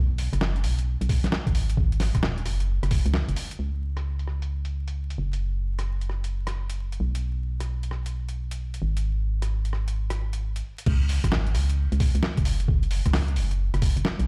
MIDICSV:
0, 0, Header, 1, 3, 480
1, 0, Start_track
1, 0, Tempo, 454545
1, 1873, Time_signature, 4, 2, 24, 8
1, 15072, End_track
2, 0, Start_track
2, 0, Title_t, "FM bass"
2, 0, Program_c, 0, 39
2, 0, Note_on_c, 0, 35, 105
2, 305, Note_off_c, 0, 35, 0
2, 346, Note_on_c, 0, 30, 101
2, 670, Note_on_c, 0, 35, 109
2, 686, Note_off_c, 0, 30, 0
2, 1023, Note_off_c, 0, 35, 0
2, 1067, Note_on_c, 0, 35, 84
2, 1253, Note_off_c, 0, 35, 0
2, 1308, Note_on_c, 0, 35, 84
2, 1378, Note_off_c, 0, 35, 0
2, 1549, Note_on_c, 0, 32, 85
2, 1849, Note_off_c, 0, 32, 0
2, 1873, Note_on_c, 0, 32, 99
2, 2225, Note_off_c, 0, 32, 0
2, 2269, Note_on_c, 0, 27, 100
2, 2592, Note_on_c, 0, 30, 108
2, 2608, Note_off_c, 0, 27, 0
2, 2945, Note_off_c, 0, 30, 0
2, 2988, Note_on_c, 0, 30, 81
2, 3173, Note_off_c, 0, 30, 0
2, 3227, Note_on_c, 0, 37, 103
2, 3413, Note_off_c, 0, 37, 0
2, 3468, Note_on_c, 0, 30, 81
2, 3538, Note_off_c, 0, 30, 0
2, 3792, Note_on_c, 0, 37, 84
2, 5456, Note_off_c, 0, 37, 0
2, 5473, Note_on_c, 0, 30, 84
2, 7376, Note_off_c, 0, 30, 0
2, 7393, Note_on_c, 0, 35, 89
2, 9297, Note_off_c, 0, 35, 0
2, 9311, Note_on_c, 0, 32, 90
2, 11215, Note_off_c, 0, 32, 0
2, 11473, Note_on_c, 0, 37, 100
2, 11825, Note_off_c, 0, 37, 0
2, 11870, Note_on_c, 0, 32, 96
2, 12193, Note_on_c, 0, 37, 108
2, 12208, Note_off_c, 0, 32, 0
2, 12545, Note_off_c, 0, 37, 0
2, 12588, Note_on_c, 0, 37, 82
2, 12773, Note_off_c, 0, 37, 0
2, 12828, Note_on_c, 0, 37, 82
2, 12898, Note_off_c, 0, 37, 0
2, 13068, Note_on_c, 0, 30, 88
2, 13369, Note_off_c, 0, 30, 0
2, 13393, Note_on_c, 0, 30, 102
2, 13745, Note_off_c, 0, 30, 0
2, 13789, Note_on_c, 0, 37, 97
2, 14112, Note_on_c, 0, 30, 106
2, 14128, Note_off_c, 0, 37, 0
2, 14464, Note_off_c, 0, 30, 0
2, 14508, Note_on_c, 0, 30, 84
2, 14693, Note_off_c, 0, 30, 0
2, 14747, Note_on_c, 0, 30, 85
2, 14817, Note_off_c, 0, 30, 0
2, 14988, Note_on_c, 0, 35, 88
2, 15072, Note_off_c, 0, 35, 0
2, 15072, End_track
3, 0, Start_track
3, 0, Title_t, "Drums"
3, 194, Note_on_c, 9, 46, 104
3, 299, Note_off_c, 9, 46, 0
3, 351, Note_on_c, 9, 37, 30
3, 351, Note_on_c, 9, 42, 68
3, 434, Note_on_c, 9, 38, 118
3, 456, Note_off_c, 9, 37, 0
3, 456, Note_off_c, 9, 42, 0
3, 540, Note_off_c, 9, 38, 0
3, 590, Note_on_c, 9, 42, 38
3, 673, Note_on_c, 9, 46, 92
3, 696, Note_off_c, 9, 42, 0
3, 779, Note_off_c, 9, 46, 0
3, 830, Note_on_c, 9, 42, 68
3, 936, Note_off_c, 9, 42, 0
3, 1070, Note_on_c, 9, 42, 57
3, 1153, Note_on_c, 9, 36, 100
3, 1154, Note_on_c, 9, 46, 104
3, 1176, Note_off_c, 9, 42, 0
3, 1259, Note_off_c, 9, 36, 0
3, 1259, Note_off_c, 9, 46, 0
3, 1309, Note_on_c, 9, 38, 60
3, 1309, Note_on_c, 9, 42, 72
3, 1395, Note_off_c, 9, 38, 0
3, 1395, Note_on_c, 9, 38, 112
3, 1415, Note_off_c, 9, 42, 0
3, 1500, Note_off_c, 9, 38, 0
3, 1549, Note_on_c, 9, 36, 104
3, 1550, Note_on_c, 9, 42, 54
3, 1634, Note_on_c, 9, 46, 91
3, 1655, Note_off_c, 9, 36, 0
3, 1656, Note_off_c, 9, 42, 0
3, 1740, Note_off_c, 9, 46, 0
3, 1790, Note_on_c, 9, 42, 67
3, 1873, Note_on_c, 9, 36, 113
3, 1896, Note_off_c, 9, 42, 0
3, 1978, Note_off_c, 9, 36, 0
3, 2030, Note_on_c, 9, 42, 37
3, 2111, Note_on_c, 9, 38, 56
3, 2111, Note_on_c, 9, 46, 106
3, 2136, Note_off_c, 9, 42, 0
3, 2217, Note_off_c, 9, 38, 0
3, 2217, Note_off_c, 9, 46, 0
3, 2267, Note_on_c, 9, 37, 33
3, 2267, Note_on_c, 9, 42, 67
3, 2269, Note_on_c, 9, 36, 57
3, 2352, Note_on_c, 9, 38, 115
3, 2373, Note_off_c, 9, 37, 0
3, 2373, Note_off_c, 9, 42, 0
3, 2375, Note_off_c, 9, 36, 0
3, 2458, Note_off_c, 9, 38, 0
3, 2510, Note_on_c, 9, 42, 37
3, 2593, Note_on_c, 9, 37, 30
3, 2593, Note_on_c, 9, 46, 91
3, 2616, Note_off_c, 9, 42, 0
3, 2699, Note_off_c, 9, 37, 0
3, 2699, Note_off_c, 9, 46, 0
3, 2749, Note_on_c, 9, 42, 69
3, 2854, Note_off_c, 9, 42, 0
3, 2989, Note_on_c, 9, 37, 52
3, 2989, Note_on_c, 9, 42, 53
3, 3071, Note_on_c, 9, 46, 116
3, 3073, Note_on_c, 9, 36, 102
3, 3095, Note_off_c, 9, 37, 0
3, 3095, Note_off_c, 9, 42, 0
3, 3177, Note_off_c, 9, 46, 0
3, 3179, Note_off_c, 9, 36, 0
3, 3227, Note_on_c, 9, 42, 69
3, 3311, Note_on_c, 9, 38, 109
3, 3333, Note_off_c, 9, 42, 0
3, 3417, Note_off_c, 9, 38, 0
3, 3469, Note_on_c, 9, 42, 55
3, 3552, Note_on_c, 9, 46, 96
3, 3575, Note_off_c, 9, 42, 0
3, 3658, Note_off_c, 9, 46, 0
3, 3709, Note_on_c, 9, 42, 66
3, 3814, Note_off_c, 9, 42, 0
3, 4189, Note_on_c, 9, 37, 30
3, 4189, Note_on_c, 9, 42, 59
3, 4295, Note_off_c, 9, 37, 0
3, 4295, Note_off_c, 9, 42, 0
3, 4428, Note_on_c, 9, 42, 35
3, 4514, Note_on_c, 9, 37, 29
3, 4534, Note_off_c, 9, 42, 0
3, 4620, Note_off_c, 9, 37, 0
3, 4669, Note_on_c, 9, 42, 59
3, 4775, Note_off_c, 9, 42, 0
3, 4909, Note_on_c, 9, 42, 47
3, 5015, Note_off_c, 9, 42, 0
3, 5149, Note_on_c, 9, 42, 63
3, 5254, Note_off_c, 9, 42, 0
3, 5389, Note_on_c, 9, 42, 49
3, 5495, Note_off_c, 9, 42, 0
3, 5631, Note_on_c, 9, 42, 59
3, 5737, Note_off_c, 9, 42, 0
3, 6111, Note_on_c, 9, 37, 30
3, 6111, Note_on_c, 9, 42, 55
3, 6217, Note_off_c, 9, 37, 0
3, 6217, Note_off_c, 9, 42, 0
3, 6351, Note_on_c, 9, 42, 33
3, 6437, Note_on_c, 9, 37, 30
3, 6457, Note_off_c, 9, 42, 0
3, 6542, Note_off_c, 9, 37, 0
3, 6590, Note_on_c, 9, 42, 57
3, 6696, Note_off_c, 9, 42, 0
3, 6830, Note_on_c, 9, 37, 51
3, 6830, Note_on_c, 9, 42, 47
3, 6936, Note_off_c, 9, 37, 0
3, 6936, Note_off_c, 9, 42, 0
3, 7070, Note_on_c, 9, 42, 60
3, 7176, Note_off_c, 9, 42, 0
3, 7311, Note_on_c, 9, 42, 45
3, 7417, Note_off_c, 9, 42, 0
3, 7550, Note_on_c, 9, 42, 61
3, 7655, Note_off_c, 9, 42, 0
3, 8030, Note_on_c, 9, 37, 28
3, 8030, Note_on_c, 9, 42, 58
3, 8136, Note_off_c, 9, 37, 0
3, 8136, Note_off_c, 9, 42, 0
3, 8270, Note_on_c, 9, 42, 32
3, 8355, Note_on_c, 9, 37, 28
3, 8376, Note_off_c, 9, 42, 0
3, 8460, Note_off_c, 9, 37, 0
3, 8511, Note_on_c, 9, 42, 55
3, 8616, Note_off_c, 9, 42, 0
3, 8749, Note_on_c, 9, 42, 47
3, 8855, Note_off_c, 9, 42, 0
3, 8989, Note_on_c, 9, 42, 61
3, 9095, Note_off_c, 9, 42, 0
3, 9229, Note_on_c, 9, 42, 47
3, 9335, Note_off_c, 9, 42, 0
3, 9469, Note_on_c, 9, 42, 57
3, 9575, Note_off_c, 9, 42, 0
3, 9950, Note_on_c, 9, 37, 29
3, 9950, Note_on_c, 9, 42, 60
3, 10056, Note_off_c, 9, 37, 0
3, 10056, Note_off_c, 9, 42, 0
3, 10191, Note_on_c, 9, 42, 34
3, 10274, Note_on_c, 9, 37, 28
3, 10296, Note_off_c, 9, 42, 0
3, 10380, Note_off_c, 9, 37, 0
3, 10430, Note_on_c, 9, 42, 60
3, 10536, Note_off_c, 9, 42, 0
3, 10668, Note_on_c, 9, 37, 49
3, 10668, Note_on_c, 9, 42, 47
3, 10774, Note_off_c, 9, 37, 0
3, 10774, Note_off_c, 9, 42, 0
3, 10909, Note_on_c, 9, 42, 63
3, 11014, Note_off_c, 9, 42, 0
3, 11150, Note_on_c, 9, 42, 51
3, 11256, Note_off_c, 9, 42, 0
3, 11388, Note_on_c, 9, 42, 60
3, 11472, Note_on_c, 9, 49, 101
3, 11474, Note_on_c, 9, 36, 127
3, 11494, Note_off_c, 9, 42, 0
3, 11578, Note_off_c, 9, 49, 0
3, 11579, Note_off_c, 9, 36, 0
3, 11713, Note_on_c, 9, 46, 107
3, 11818, Note_off_c, 9, 46, 0
3, 11870, Note_on_c, 9, 36, 60
3, 11870, Note_on_c, 9, 37, 33
3, 11870, Note_on_c, 9, 42, 68
3, 11952, Note_on_c, 9, 38, 125
3, 11975, Note_off_c, 9, 36, 0
3, 11976, Note_off_c, 9, 37, 0
3, 11976, Note_off_c, 9, 42, 0
3, 12057, Note_off_c, 9, 38, 0
3, 12109, Note_on_c, 9, 42, 36
3, 12193, Note_on_c, 9, 37, 33
3, 12193, Note_on_c, 9, 46, 103
3, 12214, Note_off_c, 9, 42, 0
3, 12299, Note_off_c, 9, 37, 0
3, 12299, Note_off_c, 9, 46, 0
3, 12350, Note_on_c, 9, 42, 66
3, 12455, Note_off_c, 9, 42, 0
3, 12588, Note_on_c, 9, 42, 51
3, 12672, Note_on_c, 9, 46, 112
3, 12673, Note_on_c, 9, 36, 106
3, 12694, Note_off_c, 9, 42, 0
3, 12778, Note_off_c, 9, 46, 0
3, 12779, Note_off_c, 9, 36, 0
3, 12828, Note_on_c, 9, 42, 70
3, 12911, Note_on_c, 9, 38, 118
3, 12934, Note_off_c, 9, 42, 0
3, 13016, Note_off_c, 9, 38, 0
3, 13067, Note_on_c, 9, 42, 53
3, 13069, Note_on_c, 9, 36, 107
3, 13150, Note_on_c, 9, 46, 108
3, 13172, Note_off_c, 9, 42, 0
3, 13175, Note_off_c, 9, 36, 0
3, 13255, Note_off_c, 9, 46, 0
3, 13306, Note_on_c, 9, 42, 66
3, 13393, Note_on_c, 9, 36, 127
3, 13411, Note_off_c, 9, 42, 0
3, 13499, Note_off_c, 9, 36, 0
3, 13547, Note_on_c, 9, 42, 34
3, 13630, Note_on_c, 9, 46, 105
3, 13652, Note_off_c, 9, 42, 0
3, 13736, Note_off_c, 9, 46, 0
3, 13788, Note_on_c, 9, 37, 31
3, 13788, Note_on_c, 9, 42, 64
3, 13789, Note_on_c, 9, 36, 64
3, 13870, Note_on_c, 9, 38, 126
3, 13870, Note_on_c, 9, 46, 64
3, 13893, Note_off_c, 9, 37, 0
3, 13893, Note_off_c, 9, 42, 0
3, 13895, Note_off_c, 9, 36, 0
3, 13976, Note_off_c, 9, 38, 0
3, 13976, Note_off_c, 9, 46, 0
3, 14027, Note_on_c, 9, 42, 37
3, 14110, Note_on_c, 9, 46, 105
3, 14132, Note_off_c, 9, 42, 0
3, 14215, Note_off_c, 9, 46, 0
3, 14268, Note_on_c, 9, 42, 63
3, 14373, Note_off_c, 9, 42, 0
3, 14508, Note_on_c, 9, 37, 56
3, 14508, Note_on_c, 9, 42, 50
3, 14593, Note_on_c, 9, 36, 110
3, 14593, Note_on_c, 9, 46, 104
3, 14614, Note_off_c, 9, 37, 0
3, 14614, Note_off_c, 9, 42, 0
3, 14698, Note_off_c, 9, 46, 0
3, 14699, Note_off_c, 9, 36, 0
3, 14750, Note_on_c, 9, 42, 66
3, 14834, Note_on_c, 9, 38, 120
3, 14855, Note_off_c, 9, 42, 0
3, 14940, Note_off_c, 9, 38, 0
3, 14990, Note_on_c, 9, 42, 52
3, 15072, Note_off_c, 9, 42, 0
3, 15072, End_track
0, 0, End_of_file